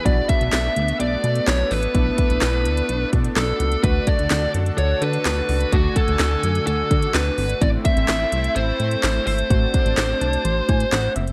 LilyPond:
<<
  \new Staff \with { instrumentName = "Lead electric guitar" } { \time 4/4 \key b \dorian \tempo 4 = 127 d''8 e''4. d''4 cis''8 b'8~ | b'2~ b'8 r8 a'4 | b'8 d''4 r8 cis''8 b'4. | fis'8 a'4. a'4 b'4 |
d''8 e''4. c''4. c''8~ | c''2.~ c''8 r8 | }
  \new Staff \with { instrumentName = "Analog synth pad" } { \time 4/4 \key b \dorian << { d'1~ | d'1 | a'1 | gis''1 |
e'1 | d'1 | } \\ { <a b>1~ | <a b>1 | <d fis'>1~ | <d fis'>1 |
<a c'>1~ | <a c'>1 | } >> }
  \new Staff \with { instrumentName = "Synth keys" } { \time 4/4 \key b \dorian << { r1 | r1 | r1 | r1 |
r1 | r4. a''8 c'''8 gis''8 fis''8 e''8 | } \\ { <b d' fis'>1 | <b d' e'>2. <b d' fis'>4 | <a d' fis'>1 | <a d' fis'>1 |
<a c' e'>1 | <a c' fis'>1 | } >> }
  \new Staff \with { instrumentName = "Analog synth bass" } { \clef bass \time 4/4 \key b \dorian b,,8 r16 b,,16 b,,8 d,8 b,,8 b,8 b,,8 a,,8 | b,,8 r16 b,,16 b,,8 d,8 b,,8 b,8 b,,8 cis,8 | d,8 r16 d,16 d,8 fis,8 d,8 d8 d,8 cis,8 | d,8 r16 d,16 d,8 fis,8 d,8 d8 d,8 gis,,8 |
a,,8 r16 a,,16 a,,8 c,8 a,,8 a,8 a,,8 gis,,8 | a,,8 r16 a,,16 a,,8 c,8 a,,8 a,8 a,,8 fis,,8 | }
  \new DrumStaff \with { instrumentName = "Drums" } \drummode { \time 4/4 <hh bd>8 <hh bd>16 hh16 <hc hh sn>8 hh16 hh16 hh8 hh16 hh16 <hc hh sn>8 hho16 hh16 | <hh bd>8 <hh bd>16 hh16 <hc hh sn>8 hh16 hh16 hh8 <hh bd>16 hh16 <hc hh sn>8 hh16 hh16 | <hh bd>8 <hh bd>16 hh16 <hc hh sn>8 hh16 hh16 hh8 hh16 hh16 <hc hh sn>8 hho16 hh16 | <hh bd>8 <hh bd>16 hh16 <hc hh sn>8 hh16 hh16 hh8 <hh bd>16 hh16 <hc hh sn>8 hho16 hh16 |
<hh bd>8 <hh bd>16 hh16 <hc hh sn>8 hh16 hh16 hh8 hh16 hh16 <hc hh sn>8 hho16 hh16 | <hh bd>8 <hh bd>16 hh16 <hc hh sn>8 hh16 hh16 hh8 <hh bd>16 hh16 <hc hh sn>8 hh16 hh16 | }
>>